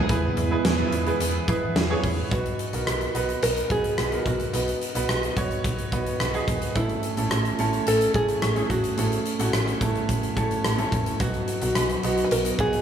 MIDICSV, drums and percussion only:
0, 0, Header, 1, 2, 480
1, 0, Start_track
1, 0, Tempo, 555556
1, 79, Time_signature, 4, 2, 24, 8
1, 11073, End_track
2, 0, Start_track
2, 0, Title_t, "Drums"
2, 79, Note_on_c, 9, 42, 81
2, 80, Note_on_c, 9, 36, 105
2, 165, Note_off_c, 9, 42, 0
2, 167, Note_off_c, 9, 36, 0
2, 320, Note_on_c, 9, 42, 63
2, 406, Note_off_c, 9, 42, 0
2, 560, Note_on_c, 9, 38, 112
2, 561, Note_on_c, 9, 42, 91
2, 647, Note_off_c, 9, 38, 0
2, 647, Note_off_c, 9, 42, 0
2, 798, Note_on_c, 9, 42, 69
2, 885, Note_off_c, 9, 42, 0
2, 921, Note_on_c, 9, 42, 42
2, 1007, Note_off_c, 9, 42, 0
2, 1041, Note_on_c, 9, 42, 93
2, 1127, Note_off_c, 9, 42, 0
2, 1279, Note_on_c, 9, 36, 77
2, 1279, Note_on_c, 9, 42, 58
2, 1365, Note_off_c, 9, 36, 0
2, 1365, Note_off_c, 9, 42, 0
2, 1520, Note_on_c, 9, 38, 109
2, 1521, Note_on_c, 9, 42, 74
2, 1607, Note_off_c, 9, 38, 0
2, 1608, Note_off_c, 9, 42, 0
2, 1759, Note_on_c, 9, 36, 72
2, 1762, Note_on_c, 9, 46, 64
2, 1845, Note_off_c, 9, 36, 0
2, 1848, Note_off_c, 9, 46, 0
2, 1999, Note_on_c, 9, 42, 71
2, 2000, Note_on_c, 9, 36, 94
2, 2086, Note_off_c, 9, 36, 0
2, 2086, Note_off_c, 9, 42, 0
2, 2122, Note_on_c, 9, 42, 41
2, 2209, Note_off_c, 9, 42, 0
2, 2239, Note_on_c, 9, 42, 57
2, 2326, Note_off_c, 9, 42, 0
2, 2360, Note_on_c, 9, 42, 57
2, 2446, Note_off_c, 9, 42, 0
2, 2481, Note_on_c, 9, 37, 105
2, 2481, Note_on_c, 9, 42, 79
2, 2567, Note_off_c, 9, 37, 0
2, 2567, Note_off_c, 9, 42, 0
2, 2601, Note_on_c, 9, 42, 40
2, 2687, Note_off_c, 9, 42, 0
2, 2720, Note_on_c, 9, 42, 65
2, 2807, Note_off_c, 9, 42, 0
2, 2841, Note_on_c, 9, 42, 37
2, 2928, Note_off_c, 9, 42, 0
2, 2960, Note_on_c, 9, 42, 79
2, 3047, Note_off_c, 9, 42, 0
2, 3080, Note_on_c, 9, 42, 46
2, 3166, Note_off_c, 9, 42, 0
2, 3198, Note_on_c, 9, 36, 73
2, 3198, Note_on_c, 9, 42, 52
2, 3284, Note_off_c, 9, 36, 0
2, 3284, Note_off_c, 9, 42, 0
2, 3320, Note_on_c, 9, 42, 48
2, 3406, Note_off_c, 9, 42, 0
2, 3438, Note_on_c, 9, 37, 98
2, 3439, Note_on_c, 9, 42, 68
2, 3525, Note_off_c, 9, 37, 0
2, 3526, Note_off_c, 9, 42, 0
2, 3560, Note_on_c, 9, 42, 44
2, 3646, Note_off_c, 9, 42, 0
2, 3678, Note_on_c, 9, 36, 65
2, 3681, Note_on_c, 9, 42, 61
2, 3765, Note_off_c, 9, 36, 0
2, 3767, Note_off_c, 9, 42, 0
2, 3798, Note_on_c, 9, 42, 46
2, 3885, Note_off_c, 9, 42, 0
2, 3919, Note_on_c, 9, 42, 74
2, 4006, Note_off_c, 9, 42, 0
2, 4042, Note_on_c, 9, 42, 41
2, 4128, Note_off_c, 9, 42, 0
2, 4160, Note_on_c, 9, 42, 60
2, 4246, Note_off_c, 9, 42, 0
2, 4278, Note_on_c, 9, 42, 59
2, 4365, Note_off_c, 9, 42, 0
2, 4398, Note_on_c, 9, 37, 104
2, 4399, Note_on_c, 9, 42, 79
2, 4485, Note_off_c, 9, 37, 0
2, 4485, Note_off_c, 9, 42, 0
2, 4519, Note_on_c, 9, 42, 40
2, 4605, Note_off_c, 9, 42, 0
2, 4636, Note_on_c, 9, 36, 74
2, 4638, Note_on_c, 9, 42, 67
2, 4723, Note_off_c, 9, 36, 0
2, 4724, Note_off_c, 9, 42, 0
2, 4759, Note_on_c, 9, 42, 36
2, 4845, Note_off_c, 9, 42, 0
2, 4876, Note_on_c, 9, 36, 80
2, 4878, Note_on_c, 9, 42, 83
2, 4963, Note_off_c, 9, 36, 0
2, 4964, Note_off_c, 9, 42, 0
2, 4998, Note_on_c, 9, 42, 47
2, 5085, Note_off_c, 9, 42, 0
2, 5116, Note_on_c, 9, 36, 72
2, 5117, Note_on_c, 9, 42, 52
2, 5203, Note_off_c, 9, 36, 0
2, 5203, Note_off_c, 9, 42, 0
2, 5239, Note_on_c, 9, 42, 53
2, 5326, Note_off_c, 9, 42, 0
2, 5357, Note_on_c, 9, 37, 102
2, 5359, Note_on_c, 9, 42, 72
2, 5444, Note_off_c, 9, 37, 0
2, 5445, Note_off_c, 9, 42, 0
2, 5477, Note_on_c, 9, 42, 42
2, 5564, Note_off_c, 9, 42, 0
2, 5596, Note_on_c, 9, 36, 68
2, 5599, Note_on_c, 9, 42, 64
2, 5683, Note_off_c, 9, 36, 0
2, 5685, Note_off_c, 9, 42, 0
2, 5717, Note_on_c, 9, 42, 48
2, 5803, Note_off_c, 9, 42, 0
2, 5836, Note_on_c, 9, 42, 71
2, 5837, Note_on_c, 9, 36, 93
2, 5923, Note_off_c, 9, 42, 0
2, 5924, Note_off_c, 9, 36, 0
2, 5957, Note_on_c, 9, 42, 42
2, 6043, Note_off_c, 9, 42, 0
2, 6073, Note_on_c, 9, 42, 59
2, 6160, Note_off_c, 9, 42, 0
2, 6196, Note_on_c, 9, 42, 57
2, 6282, Note_off_c, 9, 42, 0
2, 6315, Note_on_c, 9, 37, 106
2, 6316, Note_on_c, 9, 42, 79
2, 6402, Note_off_c, 9, 37, 0
2, 6402, Note_off_c, 9, 42, 0
2, 6438, Note_on_c, 9, 42, 43
2, 6524, Note_off_c, 9, 42, 0
2, 6555, Note_on_c, 9, 42, 62
2, 6642, Note_off_c, 9, 42, 0
2, 6679, Note_on_c, 9, 42, 37
2, 6765, Note_off_c, 9, 42, 0
2, 6798, Note_on_c, 9, 42, 85
2, 6884, Note_off_c, 9, 42, 0
2, 6918, Note_on_c, 9, 42, 49
2, 7005, Note_off_c, 9, 42, 0
2, 7036, Note_on_c, 9, 36, 74
2, 7036, Note_on_c, 9, 42, 52
2, 7122, Note_off_c, 9, 36, 0
2, 7122, Note_off_c, 9, 42, 0
2, 7158, Note_on_c, 9, 42, 51
2, 7245, Note_off_c, 9, 42, 0
2, 7277, Note_on_c, 9, 37, 104
2, 7278, Note_on_c, 9, 42, 72
2, 7364, Note_off_c, 9, 37, 0
2, 7365, Note_off_c, 9, 42, 0
2, 7397, Note_on_c, 9, 42, 41
2, 7483, Note_off_c, 9, 42, 0
2, 7516, Note_on_c, 9, 36, 69
2, 7517, Note_on_c, 9, 42, 64
2, 7602, Note_off_c, 9, 36, 0
2, 7604, Note_off_c, 9, 42, 0
2, 7637, Note_on_c, 9, 42, 50
2, 7723, Note_off_c, 9, 42, 0
2, 7756, Note_on_c, 9, 42, 74
2, 7842, Note_off_c, 9, 42, 0
2, 7878, Note_on_c, 9, 42, 43
2, 7964, Note_off_c, 9, 42, 0
2, 7996, Note_on_c, 9, 42, 59
2, 8083, Note_off_c, 9, 42, 0
2, 8117, Note_on_c, 9, 42, 61
2, 8204, Note_off_c, 9, 42, 0
2, 8237, Note_on_c, 9, 37, 100
2, 8238, Note_on_c, 9, 42, 77
2, 8324, Note_off_c, 9, 37, 0
2, 8324, Note_off_c, 9, 42, 0
2, 8360, Note_on_c, 9, 42, 41
2, 8446, Note_off_c, 9, 42, 0
2, 8476, Note_on_c, 9, 36, 74
2, 8478, Note_on_c, 9, 42, 64
2, 8562, Note_off_c, 9, 36, 0
2, 8565, Note_off_c, 9, 42, 0
2, 8601, Note_on_c, 9, 42, 37
2, 8687, Note_off_c, 9, 42, 0
2, 8717, Note_on_c, 9, 36, 77
2, 8720, Note_on_c, 9, 42, 83
2, 8804, Note_off_c, 9, 36, 0
2, 8807, Note_off_c, 9, 42, 0
2, 8840, Note_on_c, 9, 42, 49
2, 8927, Note_off_c, 9, 42, 0
2, 8957, Note_on_c, 9, 36, 75
2, 8958, Note_on_c, 9, 42, 55
2, 9043, Note_off_c, 9, 36, 0
2, 9045, Note_off_c, 9, 42, 0
2, 9080, Note_on_c, 9, 42, 51
2, 9166, Note_off_c, 9, 42, 0
2, 9197, Note_on_c, 9, 37, 102
2, 9198, Note_on_c, 9, 42, 69
2, 9284, Note_off_c, 9, 37, 0
2, 9285, Note_off_c, 9, 42, 0
2, 9318, Note_on_c, 9, 42, 44
2, 9404, Note_off_c, 9, 42, 0
2, 9437, Note_on_c, 9, 36, 70
2, 9440, Note_on_c, 9, 42, 64
2, 9523, Note_off_c, 9, 36, 0
2, 9526, Note_off_c, 9, 42, 0
2, 9558, Note_on_c, 9, 42, 49
2, 9644, Note_off_c, 9, 42, 0
2, 9676, Note_on_c, 9, 42, 74
2, 9677, Note_on_c, 9, 36, 94
2, 9762, Note_off_c, 9, 42, 0
2, 9764, Note_off_c, 9, 36, 0
2, 9796, Note_on_c, 9, 42, 42
2, 9883, Note_off_c, 9, 42, 0
2, 9916, Note_on_c, 9, 42, 59
2, 10003, Note_off_c, 9, 42, 0
2, 10035, Note_on_c, 9, 42, 65
2, 10122, Note_off_c, 9, 42, 0
2, 10156, Note_on_c, 9, 37, 98
2, 10156, Note_on_c, 9, 42, 85
2, 10242, Note_off_c, 9, 37, 0
2, 10242, Note_off_c, 9, 42, 0
2, 10277, Note_on_c, 9, 42, 42
2, 10363, Note_off_c, 9, 42, 0
2, 10397, Note_on_c, 9, 42, 70
2, 10484, Note_off_c, 9, 42, 0
2, 10518, Note_on_c, 9, 42, 39
2, 10604, Note_off_c, 9, 42, 0
2, 10638, Note_on_c, 9, 42, 80
2, 10724, Note_off_c, 9, 42, 0
2, 10757, Note_on_c, 9, 42, 48
2, 10843, Note_off_c, 9, 42, 0
2, 10875, Note_on_c, 9, 42, 55
2, 10876, Note_on_c, 9, 36, 78
2, 10961, Note_off_c, 9, 42, 0
2, 10962, Note_off_c, 9, 36, 0
2, 10998, Note_on_c, 9, 42, 53
2, 11073, Note_off_c, 9, 42, 0
2, 11073, End_track
0, 0, End_of_file